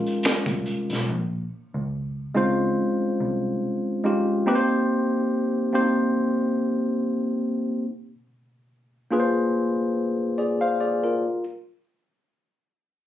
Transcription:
Already playing: tine electric piano G#3 C#4 D#4 F4 A#4
0.06 closed hi-hat
0.23 finger snap, muted picked electric bass stroke, snare, closed hi-hat
0.46 picked electric bass C2, kick, closed hi-hat
0.66 closed hi-hat
0.90 picked electric bass B1, snare, closed hi-hat
1.09 picked electric bass A#1
1.74 picked electric bass C#2
2.35 picked electric bass C#2, tine electric piano G#3 C4 D#4 F4 C5
2.42 tine electric piano C#4
3.20 picked electric bass C2
4.04 tine electric piano G#3 C#4 D#4 F4 G4
4.46 tine electric piano A#3 C4 D#4 G4 B4
4.55 tine electric piano C5
5.73 tine electric piano A#3 C4 D4 G4 C5
5.81 tine electric piano D#4
9.11 tine electric piano A#3 D4 F4 G#4 B4
9.20 tine electric piano C5
10.38 tine electric piano G#4 D5
10.61 tine electric piano C5 F5
10.81 tine electric piano G#4 D5
11.04 tine electric piano F4 A#4

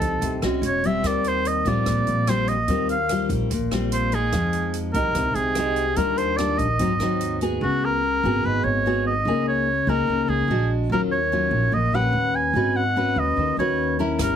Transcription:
Already playing: nylon-string guitar F3 D#4 G4 A4, oboe A4
0.01 upright bass C2, kick, closed hi-hat
0.21 upright bass C2, nylon-string guitar C3, kick, closed hi-hat
0.42 upright bass C2, nylon-string guitar G#3 C#4 F#4, cross-stick, closed hi-hat
0.62 upright bass E1, oboe C#5, closed hi-hat
0.84 nylon-string guitar G3 C4 F4, oboe E5, closed hi-hat
1.03 upright bass D#2, nylon-string guitar D#3, oboe D5, kick, cross-stick, closed hi-hat
1.24 oboe C5, closed hi-hat
1.45 oboe D#5, closed hi-hat
1.65 upright bass A#1, nylon-string guitar G3 C4 F4, oboe D5, kick, closed hi-hat
1.86 upright bass A#1, nylon-string guitar A#2, kick, cross-stick, closed hi-hat
2.06 upright bass A#1, closed hi-hat
2.27 nylon-string guitar G3 C4 F4, oboe C5, cross-stick, closed hi-hat
2.48 oboe D#5, closed hi-hat
2.68 upright bass D#2, nylon-string guitar D#3 G3 C4 F4, kick, closed hi-hat
2.89 oboe F5, closed hi-hat
3.09 nylon-string guitar G3 C4 F4, cross-stick, closed hi-hat
3.29 upright bass A#1, kick, closed hi-hat
3.50 upright bass A#1, nylon-string guitar A#2, kick, closed hi-hat
3.71 upright bass A#1, nylon-string guitar G3 C4 F4, cross-stick, closed hi-hat
3.92 oboe C5, closed hi-hat
4.12 nylon-string guitar G#3 D#4, oboe G#4, closed hi-hat
4.32 upright bass F2, nylon-string guitar F3, kick, cross-stick, closed hi-hat
4.53 closed hi-hat
4.74 closed hi-hat
4.94 upright bass C2, nylon-string guitar G#3 D#4 G4, oboe A#4, kick, closed hi-hat
5.15 upright bass C2, nylon-string guitar C3, kick, cross-stick, closed hi-hat
5.34 upright bass C2, oboe G#4, closed hi-hat
5.55 nylon-string guitar G#3 D#4 G4, cross-stick, closed hi-hat
5.76 closed hi-hat
5.96 upright bass D#2, nylon-string guitar D#3 G3 D4 F4, oboe A#4, kick, closed hi-hat
6.18 oboe C5, closed hi-hat
6.37 nylon-string guitar G3 D4 F4, oboe D5, cross-stick, closed hi-hat
6.58 upright bass A#1, oboe D#5, kick, closed hi-hat
6.79 upright bass G#1, nylon-string guitar G#2 F#3 C4 D#4, kick, closed hi-hat
6.99 upright bass D#2, nylon-string guitar F#3 C4 D#4, cross-stick, closed hi-hat
7.21 closed hi-hat
7.41 nylon-string guitar B3 F#4 G#4, closed hi-hat
7.61 upright bass C#2, nylon-string guitar C#3, oboe F#4
7.85 oboe A#4
8.23 upright bass G#1, nylon-string guitar B3 F#4 G#4
8.43 upright bass G#1, nylon-string guitar G#2, oboe B4
8.64 upright bass G#1, oboe C#5
8.86 nylon-string guitar B3 F#4 G#4
9.07 oboe D#5
9.25 upright bass C#2, nylon-string guitar C#3 A#3 D#4 G#4
9.48 oboe C#5
9.87 upright bass C#2, nylon-string guitar A#3 D#4 G#4, oboe A#4
10.07 upright bass C#2, nylon-string guitar C#3
10.23 oboe A#4
10.28 upright bass C#2, oboe G#4
10.48 upright bass A#1, nylon-string guitar G#3 D4 F#4
10.89 upright bass D#2, nylon-string guitar D#3 F#3 C#4 F4, oboe A#4
11.12 oboe C#5
11.32 nylon-string guitar F#3 C#4 F4
11.51 upright bass A#1
11.72 upright bass A#1, nylon-string guitar A#2, oboe D#5
11.92 upright bass A#1, nylon-string guitar C#4 G4 B4, oboe F#5
12.13 upright bass D#2
12.36 oboe G#5
12.53 upright bass G#1, nylon-string guitar G#3 C#4 F#4 B4
12.76 oboe F#5
12.96 nylon-string guitar C#4 F#4 B4
13.16 upright bass D#2, oboe D#5
13.37 upright bass D#2, nylon-string guitar D#3
13.57 upright bass D#2, nylon-string guitar C#4 F#4 B4, oboe C#5
13.99 nylon-string guitar C#4 E4 A#4
14.19 upright bass G1, nylon-string guitar G3, oboe A#4, kick, cross-stick, closed hi-hat

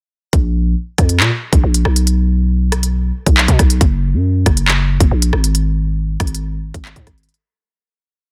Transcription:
0.33 808-style bass A#1, kick, closed hi-hat
0.98 808-style bass F2, kick, cross-stick, closed hi-hat
1.09 closed hi-hat
1.20 808-style bass A#2, clap
1.53 808-style bass A#1, kick, closed hi-hat
1.64 808-style bass A#1
1.74 closed hi-hat
1.85 808-style bass B1, cross-stick
1.96 closed hi-hat
2.07 closed hi-hat
2.72 cross-stick, closed hi-hat
2.83 closed hi-hat
3.26 808-style bass B1, kick, closed hi-hat
3.37 clap
3.48 808-style bass B2, kick, closed hi-hat
3.59 808-style bass B1, kick, cross-stick, closed hi-hat
3.70 closed hi-hat
3.81 808-style bass F#1, kick, closed hi-hat
4.14 808-style bass F#2
4.46 808-style bass F#1, kick, cross-stick, closed hi-hat
4.57 closed hi-hat
4.68 clap
5.00 808-style bass F#1, kick, closed hi-hat
5.11 808-style bass A#1
5.22 closed hi-hat
5.33 808-style bass G#1, cross-stick
5.44 closed hi-hat
5.55 closed hi-hat
6.20 808-style bass G#1, kick, cross-stick, closed hi-hat
6.27 closed hi-hat
6.35 closed hi-hat
6.74 808-style bass G#1, kick, closed hi-hat
6.85 clap
6.96 808-style bass G#2, kick, closed hi-hat
7.07 808-style bass G#1, kick, cross-stick, closed hi-hat
7.18 closed hi-hat
7.23 closed hi-hat
7.29 closed hi-hat
7.34 closed hi-hat

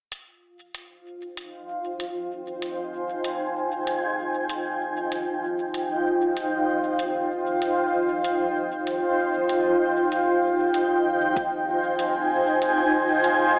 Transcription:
0.12 ambient pad F4, closed hi-hat
0.70 ambient pad D#4 C5
0.75 closed hi-hat
0.88 ambient pad G5
1.37 closed hi-hat
2.00 closed hi-hat
2.37 ambient pad G#5
2.62 closed hi-hat
3.24 closed hi-hat
3.87 closed hi-hat
4.49 closed hi-hat
5.12 closed hi-hat
5.74 closed hi-hat
6.37 closed hi-hat
6.99 closed hi-hat
7.62 closed hi-hat
8.24 closed hi-hat
8.87 closed hi-hat
9.49 closed hi-hat
10.12 closed hi-hat
10.74 closed hi-hat
11.10 ambient pad G#5
11.36 kick, closed hi-hat
11.99 closed hi-hat
12.62 closed hi-hat
13.24 closed hi-hat

